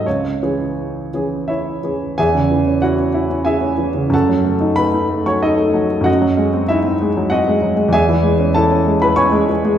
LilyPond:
<<
  \new Staff \with { instrumentName = "Grand piano" } { \time 3/4 \key cis \minor \tempo 4 = 93 cis''2 <e' cis'' e''>4 | <gis' e'' gis''>4 <fis' fis''>4 <gis' e'' gis''>4 | <a' fis'' a''>4 <b' b''>8. <cis'' cis'''>16 <dis' a' dis''>4 | <fis' dis'' fis''>4 <e' e''>4 <fis' dis'' fis''>4 |
<gis' e'' gis''>4 <a' a''>8. <b' b''>16 <cis'' gis'' cis'''>8 r8 | }
  \new Staff \with { instrumentName = "Grand piano" } { \clef bass \time 3/4 \key cis \minor cis,8 <e cis' gis'>4 <e cis' gis'>4 <e cis' gis'>8 | e,16 cis16 e16 cis'16 e'16 cis'16 e'16 cis'16 e'16 cis'16 e16 cis16 | fis,16 fis16 a16 dis'16 a16 dis'16 a16 fis8 a16 fis16 a16 | fis,16 fis16 gis16 bis16 dis'16 bis16 gis16 fis16 bis16 gis16 fis16 gis16 |
e,16 e16 gis16 cis'16 e'16 cis'16 gis16 e16 cis'16 gis16 e16 gis16 | }
>>